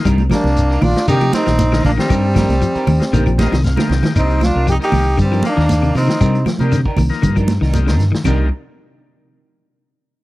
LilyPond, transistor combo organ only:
\new Staff \with { instrumentName = "Transistor combo organ" } { \time 4/4 \key c \minor \tempo 4 = 117 << { r1 | r2 r8 ees''8 f''8 g''8 | r1 | r1 |
r1 | } \\ { r4. r16 <ees' g'>16 <f bes ees' g'>16 r16 <f bes ees' g'>16 r8 <f bes ees' bes'>8. | r4. r16 <ees' f'>16 <f bes ees' g'>16 r16 <f bes ees' f'>16 r8 <f bes ees' g'>8. | <f bes ees' g'>8 r8. <f bes ees' g'>8 r8. <f bes ees' f'>8 r8 <f bes ees' f'>8 | r8. <f bes ees' g'>8 r8 <f bes ees' bes'>8 r8. <f bes ees' g'>8 r8 |
<f bes ees' g'>8 r2. r8 | } >> }